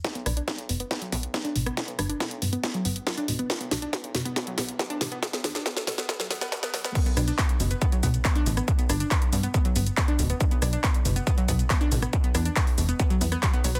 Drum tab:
CC |----------------|----------------|----------------|----------------|
HH |xxoxxxoxxxoxxxox|xxoxxxoxxxoxxxox|xxoxxxoxxxoxxxox|xxoxxxoxxxoxxxox|
SH |----------------|----------------|----------------|----------------|
CP |----------------|----------------|----------------|----------------|
SD |o-r-o---o---o--r|o-r-o---o---o---|o-o-o-o-o-o-o-o-|oooooooooooooooo|
BD |o---o---o-o-o---|o---o---o---o---|o---o---o-o-o---|o---o---o---o---|

CC |x---------------|----------------|----------------|----------------|
HH |xxoxxxoxxxoxxxox|xxoxxxoxxxoxxxox|xxoxxxoxxxoxxxox|xxoxxooxxxoxxxox|
SH |xxxxxxxxxxxxxxxx|xxxxxxxxxxxxxxxx|xxxxxxxxxxxxxxxx|xxxxxxxxxxxxxxxx|
CP |----x-------x---|----x-------x---|----x-------x---|----x-------x---|
SD |--r------------r|--r-------------|--r------------r|--r--------r----|
BD |o---o---o-o-o---|o---o---o---o---|o---o---o-o-o---|o---o---o---o---|